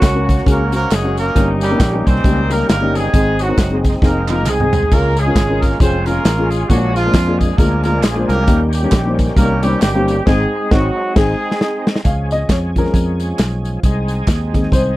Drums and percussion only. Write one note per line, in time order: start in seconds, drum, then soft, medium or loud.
0.02 kick medium
0.02 snare loud
0.02 clap loud
0.02 closed hi-hat loud
0.02 tambourine medium
0.29 kick loud
0.29 closed hi-hat medium
0.29 tambourine medium
0.38 snare soft
0.46 kick loud
0.46 closed hi-hat medium
0.46 tambourine medium
0.72 closed hi-hat loud
0.72 tambourine medium
0.91 snare loud
0.91 clap loud
0.91 closed hi-hat medium
0.91 tambourine loud
1.17 closed hi-hat medium
1.17 tambourine medium
1.36 kick medium
1.36 closed hi-hat medium
1.36 tambourine medium
1.61 closed hi-hat medium
1.61 tambourine medium
1.80 kick loud
1.80 snare loud
1.80 clap medium
1.80 closed hi-hat medium
1.80 tambourine medium
2.07 kick medium
2.07 closed hi-hat medium
2.07 tambourine medium
2.15 snare soft
2.24 kick loud
2.24 closed hi-hat medium
2.24 tambourine medium
2.50 closed hi-hat loud
2.50 tambourine medium
2.69 snare loud
2.69 clap medium
2.69 closed hi-hat medium
2.69 tambourine medium
2.95 closed hi-hat medium
2.95 tambourine medium
3.14 kick loud
3.14 closed hi-hat medium
3.14 tambourine medium
3.39 closed hi-hat medium
3.39 tambourine medium
3.58 kick loud
3.58 snare loud
3.58 clap loud
3.58 closed hi-hat medium
3.58 tambourine loud
3.84 kick medium
3.84 snare soft
3.84 closed hi-hat medium
3.84 tambourine medium
3.93 snare soft
4.02 kick loud
4.02 snare medium
4.02 tambourine medium
4.28 clap medium
4.28 high tom medium
4.28 tambourine medium
4.46 clap medium
4.46 mid tom medium
4.46 tambourine medium
4.60 mid tom medium
4.73 floor tom loud
4.73 tambourine medium
4.83 floor tom medium
4.91 kick medium
4.91 tambourine medium
4.91 crash medium
5.17 closed hi-hat medium
5.17 tambourine medium
5.36 kick loud
5.36 snare loud
5.36 clap loud
5.36 closed hi-hat medium
5.36 tambourine loud
5.62 kick medium
5.62 snare soft
5.62 closed hi-hat medium
5.62 tambourine medium
5.72 snare soft
5.80 kick loud
5.80 closed hi-hat medium
5.80 tambourine medium
6.06 closed hi-hat medium
6.06 tambourine medium
6.25 snare loud
6.25 clap medium
6.25 closed hi-hat medium
6.25 tambourine medium
6.51 closed hi-hat medium
6.51 tambourine medium
6.70 kick medium
6.70 closed hi-hat loud
6.70 tambourine medium
6.96 closed hi-hat medium
6.96 tambourine medium
7.14 kick loud
7.14 snare loud
7.14 clap medium
7.14 closed hi-hat loud
7.14 tambourine loud
7.41 kick medium
7.41 closed hi-hat medium
7.41 tambourine medium
7.58 kick loud
7.58 closed hi-hat medium
7.58 tambourine medium
7.84 closed hi-hat medium
7.84 tambourine medium
8.03 snare loud
8.03 clap loud
8.03 closed hi-hat medium
8.03 tambourine loud
8.29 closed hi-hat medium
8.29 tambourine medium
8.47 kick loud
8.47 closed hi-hat medium
8.47 tambourine medium
8.73 closed hi-hat medium
8.73 tambourine medium
8.92 kick medium
8.92 snare loud
8.92 clap medium
8.92 closed hi-hat loud
8.92 tambourine loud
9.18 kick medium
9.18 snare soft
9.18 closed hi-hat medium
9.18 tambourine medium
9.28 snare soft
9.37 kick loud
9.37 closed hi-hat medium
9.37 tambourine medium
9.63 closed hi-hat medium
9.63 tambourine medium
9.82 snare loud
9.82 clap medium
9.82 closed hi-hat loud
9.82 tambourine loud
10.08 closed hi-hat medium
10.08 tambourine soft
10.27 kick medium
10.27 snare loud
10.27 crash medium
10.71 kick loud
10.71 snare loud
11.16 kick loud
11.16 snare loud
11.16 crash medium
11.51 snare medium
11.61 snare medium
11.87 snare loud
11.96 snare medium
12.05 kick medium
12.05 closed hi-hat medium
12.05 tambourine medium
12.31 closed hi-hat medium
12.31 tambourine medium
12.49 kick medium
12.49 snare loud
12.49 clap medium
12.49 closed hi-hat medium
12.49 tambourine medium
12.76 kick medium
12.76 closed hi-hat medium
12.76 tambourine soft
12.85 snare soft
12.94 kick loud
12.94 closed hi-hat medium
12.94 tambourine medium
13.20 closed hi-hat medium
13.20 tambourine medium
13.39 snare loud
13.39 clap medium
13.39 closed hi-hat medium
13.39 tambourine medium
13.65 closed hi-hat medium
13.65 tambourine soft
13.83 kick medium
13.83 closed hi-hat medium
13.83 tambourine medium
14.08 closed hi-hat medium
14.08 tambourine medium
14.27 kick loud
14.27 snare loud
14.27 clap medium
14.27 closed hi-hat medium
14.27 tambourine medium
14.54 kick medium
14.54 snare soft
14.54 closed hi-hat medium
14.54 tambourine medium
14.63 snare soft
14.72 kick loud
14.72 closed hi-hat medium
14.72 tambourine medium